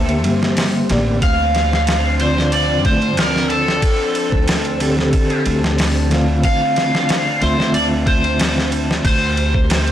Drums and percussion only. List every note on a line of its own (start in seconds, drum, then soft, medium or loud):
0.09 ride soft
0.24 ride medium
0.43 snare medium
0.57 snare loud
0.57 open hi-hat medium
0.89 snare soft
0.89 ride medium
1.22 kick loud
1.22 ride medium
1.55 snare soft
1.55 ride medium
1.73 snare soft
1.87 snare loud
1.87 ride medium
2.20 ride medium
2.38 snare soft
2.52 ride medium
2.85 kick medium
2.85 ride medium
3.02 ride soft
3.17 snare loud
3.17 ride medium
3.36 snare soft
3.50 ride medium
3.68 snare medium
3.82 kick loud
3.82 ride medium
4.15 ride medium
4.32 kick medium
4.48 snare loud
4.48 ride medium
4.65 ride soft
4.80 ride medium
4.99 snare soft
5.13 kick loud
5.13 ride medium
5.30 ride soft
5.46 ride medium
5.64 snare medium
5.78 snare loud
5.78 open hi-hat medium
6.11 snare soft
6.11 ride medium
6.44 kick loud
6.44 ride medium
6.76 snare soft
6.76 ride medium
6.95 snare medium
7.09 snare loud
7.09 ride medium
7.42 ride medium
7.60 snare soft
7.74 ride medium
8.07 kick medium
8.07 ride medium
8.24 ride soft
8.39 snare loud
8.39 ride medium
8.58 snare soft
8.72 ride medium
8.91 snare medium
9.05 kick loud
9.05 ride medium
9.37 ride medium
9.54 kick medium
9.70 snare loud
9.70 ride medium
9.88 ride soft